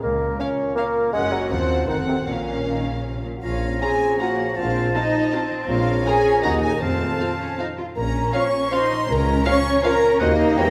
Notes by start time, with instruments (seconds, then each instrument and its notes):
Already playing: harp F3 C#4 F4 A#4 C#5 F5, french horn section A#4
0.03 double bass section C#2, cello section C#2, harp C#3, bassoon A#3, french horn section F4, clarinet A#4
0.22 harp C#4
0.39 bassoon C#4, viola section C#4, harp A#4, violin section A#4 F5, clarinet C#5
0.59 harp C#5
0.75 bassoon A#3, viola section C#4, harp F4, clarinet A#4, violin section A#4 F5
0.96 harp A#3
1.13 double bass section F#1, harp F#2, cello section F#2, bassoon G#3, viola section C#4, french horn section F#4 A#4, clarinet G#4, violin section A#4 F#5
1.32 bassoon F#3, clarinet F#4, harp F#4 A#4
1.50 double bass section D#2, cello section D#2, harp D#3, bassoon F3, viola section C4, clarinet F4, french horn section F#4 C5, violin section C5 F#5
1.70 harp F#4 C5
1.88 double bass section F1, cello section F2, bassoon D#3, harp F3, viola section C4, clarinet D#4, french horn section F#4 A4, violin section A4 F#5
2.07 bassoon C3, clarinet C4, harp F#4 A4
2.27 double bass section A#1, harp A#2, bassoon A#2, cello section A#2, clarinet A#3, viola section C#4, french horn section C#4 A#4, violin section A#4 F5
2.47 harp C#4
2.66 cello section D#3, harp A#4
2.86 cello section C#3, harp C#5
3.05 cello section C3, harp F4
3.24 cello section A#2, harp F3
3.35 french horn section F#4
3.42 double bass section A#1, tuba A#1, harp A#2, bassoon F3, cello section C#4, french horn section F4, clarinet C#5, flute section F5, violin section F5, oboe A#5
3.63 harp C#4
3.80 cello section C4, viola section C#4 F4, french horn section G#4, harp A#4, flute section G#5, violin section G#5 A#5
4.01 harp C#5
4.19 cello section A#3, viola section C#4 F4, harp F4, french horn section F#4, flute section F#5, violin section F#5 A#5
4.38 harp F3
4.56 double bass section A#1, tuba A#1, harp A#2, cello section C4, french horn section F4, clarinet C5, flute section F5, violin section F5, oboe A5
4.76 harp C4
4.94 viola section C4 F4, cello section D#4, french horn section D#4, harp A4, violin section D#5 A5, flute section D#5
5.14 harp C5
5.31 viola section C4 F4, cello section C4, harp F4, violin section A5
5.51 harp F3
5.68 tuba A#1, double bass section A#1, harp A#2, bassoon F3, french horn section F4, clarinet C#5, violin section F5, flute section F5, oboe A#5
5.88 harp C#4
6.05 viola section C#4 A#4, cello section C#4, french horn section G#4, harp A#4, violin section G#5 A#5, flute section G#5
6.25 harp C#5
6.42 double bass section D#2, tuba D#2, bassoon D#3, harp D#3, viola section D#4 F#4, cello section D#4, french horn section F#4, clarinet D#5, violin section F#5 A#5, flute section F#5
6.61 harp F#4 A#4, french horn section G#4, violin section G#5, flute section G#5
6.72 french horn section A#4
6.80 tuba F1, double bass section F2, bassoon F3, harp F3, cello section C4, french horn section A4, clarinet C5, oboe F5, violin section A5, flute section A5
7.01 harp F4
7.19 viola section C4 F4, cello section C4, harp C5, violin section F5
7.39 cello section C#4, harp F5
7.58 viola section C4 F4, cello section D#4, harp C5, violin section F5
7.78 harp C4, cello section F4
7.96 tuba A#1, double bass section A#1, harp A#2, cello section C#4, french horn section A#4, violin section A#5, flute section A#5
8.16 harp C#4
8.33 bassoon F3, viola section C#4 F4, harp A#4, french horn section C#5, clarinet C#5, violin section F5 C#6, oboe F5, flute section C#6
8.53 harp C#5
8.71 bassoon F3, viola section C#4 F4, cello section D#4, harp F4, french horn section C5, clarinet C#5, violin section F5 C6, oboe F5, flute section C6
8.91 harp F3
9.09 double bass section C#2, tuba C#2, harp C#3, cello section C#4, french horn section A#4, violin section A#5, flute section A#5
9.28 harp C#4
9.45 bassoon F3, viola section C#4 F4, harp A#4, clarinet C#5, french horn section C#5, violin section F5 C#6, oboe F5, flute section C#6
9.66 harp C#5
9.83 bassoon F3, viola section C#4 F4, harp F4, french horn section A#4, clarinet C#5, oboe F5, violin section F5 A#5, flute section A#5
10.03 harp A#3
10.19 double bass section D#2, tuba D#2, harp D#3, bassoon D#3, cello section A#3, viola section C4 F#4, french horn section D#4, clarinet C5, violin section D#5, flute section D#5, oboe F#5
10.28 french horn section F4
10.34 french horn section D#4
10.40 harp F#4 C5
10.57 tuba E1, double bass section E2, harp E3, bassoon E3, viola section A#3 E4, french horn section G4, violin section C#5 G5, clarinet C#5, flute section G5, oboe A#5